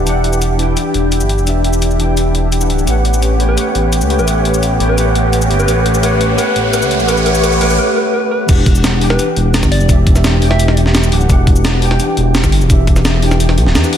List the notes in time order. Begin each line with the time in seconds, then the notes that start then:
Already playing: E3 D4 E4 G4 E5 F#5 G5
0.04 E1 E3 D4 G4, closed hi-hat, shaker
0.09 F#5
0.24 closed hi-hat
0.33 shaker
0.42 closed hi-hat, shaker
0.57 E3 D4 G4, closed hi-hat
0.62 G5
0.77 closed hi-hat, shaker
0.94 E1, closed hi-hat
1.12 closed hi-hat, shaker
1.21 G1, shaker
1.29 closed hi-hat
1.38 E1, shaker
1.44 E3 D4 G4, closed hi-hat, shaker
1.49 E5
1.64 closed hi-hat
1.73 shaker
1.82 closed hi-hat, shaker
1.91 shaker
1.97 E1 E3 D4 G4, closed hi-hat
2.02 G5
2.17 closed hi-hat, shaker
2.35 closed hi-hat
2.52 closed hi-hat, shaker
2.60 E3 D4 G4 F#5, shaker
2.70 D1, closed hi-hat
2.79 shaker
2.85 A1 A3 B3 C#4 G4 B4 C#5, closed hi-hat, riser, shaker
2.90 F#5
3.05 closed hi-hat
3.14 shaker
3.22 closed hi-hat, shaker
3.37 A3 G4 B4 C#5, closed hi-hat
3.42 G5
3.49 B4
3.55 A3 G4 B4 C#5, closed hi-hat, shaker
3.60 F#5
3.75 A1, closed hi-hat
3.93 closed hi-hat, shaker
4.01 C#2, shaker
4.08 A3 G4 B4 C#5, closed hi-hat
4.13 G5
4.19 A1 B4, shaker
4.25 A3 G4 B4 C#5, closed hi-hat, shaker
4.30 F#5
4.45 closed hi-hat
4.54 shaker
4.63 closed hi-hat, shaker
4.78 A1 A3 G4 B4 C#5, closed hi-hat
4.83 G5
4.89 B4
4.95 A3 G4 B4 C#5, closed hi-hat, shaker
5.00 F#5
5.15 closed hi-hat
5.33 closed hi-hat, shaker
5.42 shaker
5.48 G1 A3 G4 B4 C#5, closed hi-hat
5.53 G5
5.59 B4, shaker
5.65 A1 A3 G4 B4 C#5, closed hi-hat, shaker
5.70 F#5
5.86 closed hi-hat
5.94 shaker
6.00 A3 G4 B4 C#5, closed hi-hat, shaker
6.06 F#5
6.21 closed hi-hat
6.36 A3 G4 B4 C#5, closed hi-hat, shaker
6.41 F#5
6.56 A1, closed hi-hat
6.71 A3 G4 B4 C#5, closed hi-hat, shaker
6.76 F#5
6.82 C#2, shaker
6.91 closed hi-hat
7.00 A1, shaker
7.06 A3 G4 B4 C#5, closed hi-hat, shaker
7.11 F#5
7.17 shaker
7.23 A3 G4 B4 C#5, closed hi-hat
7.28 F#5
7.35 shaker
7.41 A3 G4 B4 C#5, closed hi-hat, shaker
7.46 F#5
7.52 shaker
7.58 A1 A3 G4 B4 C#5, closed hi-hat
7.63 F#5
7.70 shaker
7.79 B4
7.96 B4
8.14 B4
8.31 B4
8.46 E1 E3 D4 G4, kick, closed hi-hat, crash, shaker
8.51 F#5
8.66 kick, closed hi-hat
8.75 shaker
8.84 snare, closed hi-hat, shaker
8.99 E3 D4 G4, open hi-hat
9.04 G5
9.10 B4, snare
9.19 closed hi-hat, shaker
9.36 E1, closed hi-hat
9.54 snare, closed hi-hat, shaker
9.63 G1, kick, snare, shaker
9.72 D5, open hi-hat
9.80 E1, shaker
9.87 E3 D4 G4, kick, closed hi-hat, shaker
9.92 E5
10.07 kick, closed hi-hat
10.16 snare, shaker
10.24 snare, closed hi-hat, shaker
10.39 E1 E3 D4 G4, open hi-hat
10.44 G5
10.51 E5, snare
10.59 closed hi-hat, shaker
10.68 snare
10.77 closed hi-hat
10.86 snare
10.95 snare, closed hi-hat, shaker
11.03 shaker
11.11 D1 E3 D4 G4 F#5, open hi-hat
11.21 shaker
11.27 E1 E3 D4 G4, kick, closed hi-hat, shaker
11.32 F#5
11.47 kick, closed hi-hat
11.56 shaker
11.65 snare, closed hi-hat, shaker
11.80 E3 D4 G4, open hi-hat
11.85 G5
11.91 snare
12.00 closed hi-hat, shaker
12.17 E1, closed hi-hat
12.35 snare, closed hi-hat, shaker
12.44 G1, kick, snare, shaker
12.52 open hi-hat
12.61 E1, shaker
12.67 E3 D4 G4, kick, closed hi-hat, shaker
12.72 E5
12.87 kick, closed hi-hat
12.96 snare, shaker
13.05 snare, closed hi-hat, shaker
13.20 E1 E3 D4 G4, open hi-hat
13.25 G5
13.31 snare, shaker
13.40 closed hi-hat, shaker
13.49 snare
13.57 B1, closed hi-hat
13.66 D1, snare
13.75 E2, snare, closed hi-hat, shaker
13.82 E3 D4 G4 F#5, shaker
13.93 open hi-hat